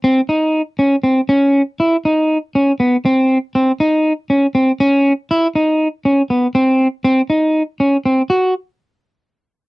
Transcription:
0.04 C4
0.29 D#4
0.79 C#4
1.03 C4
1.29 C#4
1.80 E4
2.05 D#4
2.55 C#4
2.80 B3
3.06 C4
3.55 C4
3.80 D#4
4.30 C#4
4.55 C4
4.80 C#4
5.31 E4
5.55 D#4
6.05 C#4
6.30 B3
6.55 C4
7.05 C4
7.30 D#4
7.80 C#4
8.06 C4
8.30 F#4

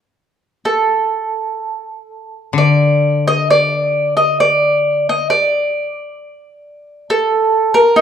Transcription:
0.65 A4
2.53 D3
2.58 D5
3.28 D#5
3.50 D5
4.17 D#5
4.40 D5
5.09 D#5
5.30 D5
7.10 A4
7.74 A#4
7.96 D#4

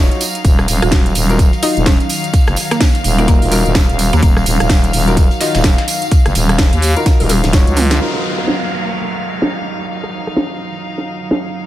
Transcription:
Already playing: F#3 D#4 F4 F#4 C#5 F5
0.11 closed hi-hat, tambourine
0.21 closed hi-hat, open hi-hat, tambourine
0.35 closed hi-hat, tambourine
0.44 D#1 D#3 F#3 F5, kick, closed hi-hat, tambourine
0.59 cross-stick, tambourine
0.68 D#1, closed hi-hat, open hi-hat, tambourine
0.82 D#1 F#4, cross-stick, closed hi-hat, tambourine
0.92 kick, snare, closed hi-hat, tambourine
1.06 closed hi-hat, tambourine
1.15 D#1, closed hi-hat, open hi-hat, tambourine
1.30 D#4 F4 F#4 A#4, closed hi-hat, tambourine
1.39 kick, closed hi-hat, tambourine
1.53 closed hi-hat, tambourine
1.63 D#4 F4 F#4 D#5, closed hi-hat, open hi-hat, tambourine
1.76 D#1, closed hi-hat, tambourine
1.86 C#4, kick, snare, closed hi-hat, tambourine
2.00 closed hi-hat, tambourine
2.09 closed hi-hat, open hi-hat, tambourine
2.24 closed hi-hat, tambourine
2.33 kick, closed hi-hat, tambourine
2.47 F#1, cross-stick, closed hi-hat, tambourine
2.56 closed hi-hat, open hi-hat, tambourine
2.71 A#3, cross-stick, snare, closed hi-hat, tambourine
2.80 kick, snare, closed hi-hat, tambourine
2.95 closed hi-hat, tambourine
3.04 D#1, closed hi-hat, open hi-hat, tambourine
3.18 A#3 D#4 F4 F#4 A#4, closed hi-hat, tambourine
3.28 A#3, kick, closed hi-hat, tambourine
3.42 D#1, open hi-hat, tambourine
3.52 D#4 F4 F#4 A#4, snare, closed hi-hat, open hi-hat, tambourine
3.66 D#1, closed hi-hat, tambourine
3.75 kick, snare, closed hi-hat, tambourine
3.89 D#1, closed hi-hat, tambourine
3.99 closed hi-hat, open hi-hat, tambourine
4.13 D#2 A#3, closed hi-hat, tambourine
4.22 D#1 A#3, kick, closed hi-hat, tambourine
4.37 cross-stick, tambourine
4.46 D#1, closed hi-hat, open hi-hat, tambourine
4.60 D#1, cross-stick, closed hi-hat, tambourine
4.69 kick, snare, closed hi-hat, tambourine
4.84 closed hi-hat, tambourine
4.93 D#1, closed hi-hat, open hi-hat, tambourine
5.08 D#4 F4 F#4 A#4, closed hi-hat, tambourine
5.17 kick, closed hi-hat, tambourine
5.31 closed hi-hat, tambourine
5.41 D#4 F4 F#4 D#5, snare, closed hi-hat, open hi-hat, tambourine
5.55 D#1, snare, closed hi-hat, tambourine
5.64 kick, snare, closed hi-hat, tambourine
5.78 snare, closed hi-hat, tambourine
5.88 closed hi-hat, open hi-hat, tambourine
6.02 closed hi-hat, tambourine
6.11 kick, closed hi-hat, tambourine
6.26 F#1, cross-stick, closed hi-hat, tambourine
6.35 D#1, closed hi-hat, open hi-hat, tambourine
6.49 cross-stick, snare, closed hi-hat, tambourine
6.58 kick, snare, closed hi-hat, tambourine
6.73 D#2, closed hi-hat, tambourine
6.82 closed hi-hat, open hi-hat, tambourine
6.96 D#4 F4 F#4 A#4, closed hi-hat, tambourine
7.06 kick, snare, closed hi-hat, tambourine
7.20 D#1, open hi-hat, high tom, tambourine
7.29 snare, closed hi-hat, open hi-hat, high tom, tambourine
7.44 D#1, snare, closed hi-hat, tambourine
7.53 D#4 F4 F#4 C#5, kick, snare, closed hi-hat, tambourine
7.67 C#2, closed hi-hat, tambourine
7.76 closed hi-hat, mid tom, open hi-hat, tambourine
7.91 snare, closed hi-hat, tambourine
8.01 F#3 D#4 F4 F#4 A#4 F5, downlifter
8.15 cross-stick
8.38 cross-stick
8.47 snare
9.42 snare
10.04 cross-stick
10.27 cross-stick
10.36 snare
10.60 open hi-hat
10.98 snare
11.08 open hi-hat
11.31 snare
11.55 open hi-hat

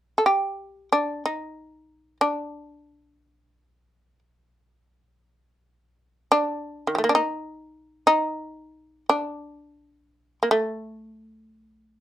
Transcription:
0.18 A4
0.26 G4
0.92 D4
1.26 D#4
2.21 D4
6.32 D4
6.87 D#3
6.95 G3 A3
7.04 A#3
7.09 D4
7.15 D#4
8.07 D#4
9.09 D4
10.43 A#3
10.51 A3

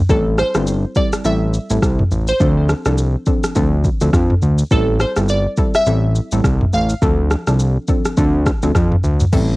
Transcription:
0.09 A1 G3 C4 E4 A4, kick, shaker
0.38 C5, cross-stick, shaker
0.55 G1 G3 C4 E4 A4, cross-stick, shaker
0.67 shaker
0.95 G3 C4 E4 A4 D5, kick, shaker
1.13 cross-stick, shaker
1.25 A1 G3 C4 E4 A4 E5, shaker
1.54 shaker
1.70 A1 G3 C4 E4 A4, shaker
1.82 C2, kick, cross-stick, shaker
1.99 mid tom
2.11 A1, shaker
2.28 C5, shaker
2.40 D2 F3 C4 D4 A4, kick, shaker
2.69 cross-stick, shaker
2.85 C2 F3 C4 D4 A4, cross-stick, shaker
2.98 shaker
3.26 F3 C4 D4 A4, kick, shaker
3.44 cross-stick, shaker
3.55 D2 F3 C4 D4 A4, kick, shaker
3.84 kick, shaker
4.01 D2 F3 C4 D4 A4, shaker
4.13 F2, kick, cross-stick, shaker
4.30 mid tom
4.42 D2, shaker
4.58 shaker
4.71 A1 G3 C4 E4 A4, kick, shaker
5.00 C5, cross-stick, shaker
5.16 G1 G3 C4 E4 A4, cross-stick, shaker
5.29 D5, shaker
5.57 G3 C4 E4 A4, kick, shaker
5.74 E5, cross-stick, shaker
5.86 A1 G3 C4 E4 A4, shaker
6.15 shaker
6.32 A1 G3 C4 E4 A4, shaker
6.44 C2, kick, cross-stick, shaker
6.61 mid tom
6.73 A1 F5, shaker
6.89 shaker
7.02 D2 F3 C4 D4 A4, kick, shaker
7.31 cross-stick, shaker
7.47 C2 F3 C4 D4 A4, cross-stick, shaker
7.59 shaker
7.88 F3 C4 D4 A4, kick, shaker
8.05 cross-stick, shaker
8.17 D2 F3 C4 D4 A4, kick, shaker
8.46 kick, cross-stick, shaker
8.62 D2 F3 C4 D4 A4, shaker
8.75 F2, kick, cross-stick, shaker
8.92 mid tom
9.04 D2, shaker
9.20 mid tom, shaker
9.33 A1 G3 C4 E4 A4, kick, crash, shaker

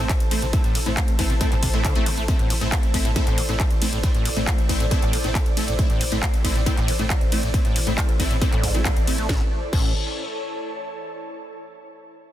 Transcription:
Already playing: E4 A4 C5 A5
0.00 A3 C4 E4
0.09 A3, kick, clap, closed hi-hat, ride
0.20 A1, closed hi-hat
0.31 A1 A3 C4 E4, open hi-hat, ride
0.42 A1 C3, closed hi-hat
0.53 A2 A3 C4 E4, kick, closed hi-hat, ride
0.64 A1 A2, closed hi-hat
0.75 A1 B2, open hi-hat, ride
0.86 A1 A2 A3 C4 E4, closed hi-hat
0.97 A3, kick, clap, closed hi-hat, ride
1.08 A1, closed hi-hat
1.19 A1 A3 C4 E4, kick, open hi-hat, ride
1.30 A1 C3, closed hi-hat
1.41 A2 A3 C4 E4, kick, closed hi-hat, ride
1.52 A1 A2, clap, closed hi-hat
1.63 A1 C3, kick, open hi-hat, ride
1.74 A1 A2 A3 C4 E4, closed hi-hat
1.85 D3, kick, clap, closed hi-hat, ride
1.95 A1 A3 C4 E4, closed hi-hat
2.06 A1 A2, open hi-hat, ride
2.17 A1 A3, closed hi-hat
2.28 A2 A3 C4 E4, kick, closed hi-hat, ride
2.39 A1 A2, closed hi-hat
2.50 A1 B2, open hi-hat, ride
2.61 A1 A2 A3 C4 E4, closed hi-hat
2.72 A3, kick, clap, closed hi-hat, ride
2.77 D5
2.83 A1, closed hi-hat
2.94 A1 A3 C4 E4, kick, open hi-hat, ride
3.05 A1 A2, closed hi-hat
3.16 A2 A3 C4 E4, kick, closed hi-hat, ride
3.27 A1 A2, clap, closed hi-hat
3.38 A1 B2, open hi-hat, ride
3.49 A1 A2 A3 C4 E4, closed hi-hat
3.60 A3, kick, clap, closed hi-hat, ride
3.71 A1, closed hi-hat
3.82 A1 A3 C4 E4, open hi-hat, ride
3.92 A1 A2, closed hi-hat
4.04 A2 A3 C4 E4, kick, closed hi-hat, ride
4.14 A1 A2, closed hi-hat
4.25 A1 B2, open hi-hat, ride
4.36 A1 A2 A3 C4 E4, closed hi-hat
4.47 A3, kick, clap, closed hi-hat, ride
4.58 A1, closed hi-hat
4.69 A1 A3 C4 E4, kick, open hi-hat, ride
4.80 A1 A2, closed hi-hat
4.91 A2 A3 C4 E4, kick, closed hi-hat, ride
5.02 A1 A2, clap, closed hi-hat
5.13 A1 B2, open hi-hat, ride
5.24 A1 A2 A3 C4 E4, closed hi-hat
5.35 A3, kick, clap, closed hi-hat, ride
5.46 A1, closed hi-hat
5.57 A1 A3 C4 E4, open hi-hat, ride
5.68 A1 A2, closed hi-hat
5.79 A2 A3 C4 E4, kick, closed hi-hat, ride
5.90 A1 A2, closed hi-hat
6.00 A1 B2, open hi-hat, ride
6.12 A1 A2 A3 C4 E4, closed hi-hat
6.23 A3, kick, clap, closed hi-hat, ride
6.33 A1, closed hi-hat
6.44 A1 A3 C4 E4, kick, open hi-hat, ride
6.55 A1 A2, closed hi-hat
6.66 A2 A3 C4 E4, kick, closed hi-hat, ride
6.77 A1 A2, clap, closed hi-hat
6.88 A1 B2, open hi-hat, ride
6.99 A1 A2 A3 C4 E4, closed hi-hat
7.10 A3, kick, clap, closed hi-hat, ride
7.21 A1, closed hi-hat
7.32 A1 A3 C4 E4, open hi-hat, ride
7.43 A1 A2, closed hi-hat
7.54 A2 A3 C4 E4, kick, closed hi-hat, ride
7.65 A1 A2, closed hi-hat
7.76 A1 B2, open hi-hat, ride
7.87 A1 A2 A3 C4 E4, closed hi-hat
7.98 A3, kick, clap, closed hi-hat, ride
8.09 A1, closed hi-hat
8.20 A1 A3 C4 E4, kick, open hi-hat, ride
8.30 A1 A2, closed hi-hat
8.41 A2 A3 C4 E4, kick, closed hi-hat, ride
8.52 A1 A2, clap, closed hi-hat
8.63 A1 G#2, kick, open hi-hat, ride
8.74 A1 A3 C4 E4, closed hi-hat
8.85 A1, kick, clap, closed hi-hat, ride
8.96 A1, closed hi-hat
9.07 A1 A3 C4 E4, open hi-hat, ride
9.18 A1 A3, closed hi-hat
9.29 A1 A2 E3 C#4 E4 A4, kick, snare
9.36 A4
9.42 C#5
9.49 A5
9.73 A1 A2 E3 C#4 A4, kick, crash

